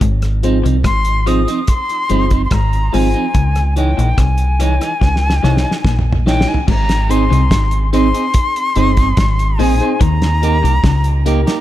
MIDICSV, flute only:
0, 0, Header, 1, 2, 480
1, 0, Start_track
1, 0, Key_signature, -4, "major"
1, 0, Tempo, 833333
1, 8, Time_signature, 4, 2, 24, 8
1, 6686, End_track
2, 0, Start_track
2, 0, Title_t, "Flute"
2, 0, Program_c, 0, 73
2, 494, Note_on_c, 0, 84, 123
2, 732, Note_on_c, 0, 87, 98
2, 741, Note_off_c, 0, 84, 0
2, 974, Note_on_c, 0, 84, 119
2, 982, Note_off_c, 0, 87, 0
2, 1407, Note_off_c, 0, 84, 0
2, 1410, Note_on_c, 0, 84, 71
2, 1454, Note_on_c, 0, 82, 95
2, 1463, Note_off_c, 0, 84, 0
2, 1693, Note_on_c, 0, 80, 95
2, 1702, Note_off_c, 0, 82, 0
2, 2170, Note_off_c, 0, 80, 0
2, 2175, Note_on_c, 0, 79, 83
2, 2415, Note_on_c, 0, 80, 100
2, 2423, Note_off_c, 0, 79, 0
2, 3444, Note_off_c, 0, 80, 0
2, 3612, Note_on_c, 0, 79, 92
2, 3735, Note_on_c, 0, 80, 82
2, 3743, Note_off_c, 0, 79, 0
2, 3850, Note_off_c, 0, 80, 0
2, 3855, Note_on_c, 0, 82, 109
2, 4093, Note_on_c, 0, 84, 107
2, 4101, Note_off_c, 0, 82, 0
2, 4567, Note_off_c, 0, 84, 0
2, 4570, Note_on_c, 0, 84, 118
2, 5529, Note_on_c, 0, 80, 100
2, 5537, Note_off_c, 0, 84, 0
2, 5769, Note_on_c, 0, 82, 112
2, 5778, Note_off_c, 0, 80, 0
2, 6686, Note_off_c, 0, 82, 0
2, 6686, End_track
0, 0, End_of_file